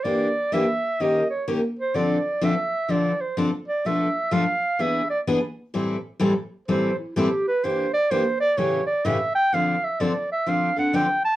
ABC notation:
X:1
M:4/4
L:1/8
Q:"Swing" 1/4=127
K:Am
V:1 name="Clarinet"
d2 e2 ^d ^c z =c | d2 e2 d c z d | e2 f2 e d z2 | z4 c E G B |
c d c d ^c d e g | [K:Dm] f e d e f ^f g a |]
V:2 name="Steel-string acoustic guitar"
[E,_B,DG] z [E,B,DG] z [^D,^A,^CG^A] z [D,A,CGA] z | [D,F,CDA] z [D,F,CDA] z [D,F,CDA] z [D,F,CDA] z | [B,,F,A,DA] z [B,,F,A,DA] z [E,B,D^G] z [E,B,DG] z | [A,,E,G,CEA] z [A,,E,G,CEA] z [A,,E,G,CEA] z [A,,E,G,CEA] z |
[E,_B,DG] z [E,B,DG] z [A,,^C,E,A,^CG] z [A,,C,E,A,CG] z | [K:Dm] [D,F,CDA] z [D,F,CDA] z [D,F,CDA] [CDA] [D,F,CDA] z |]